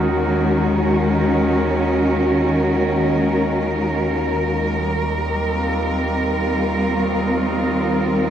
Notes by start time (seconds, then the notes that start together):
Already playing: D#2 D#3 G#3 C#4 F#4 A#4
0.01 A#4
4.81 G3
5.39 C4
5.47 F4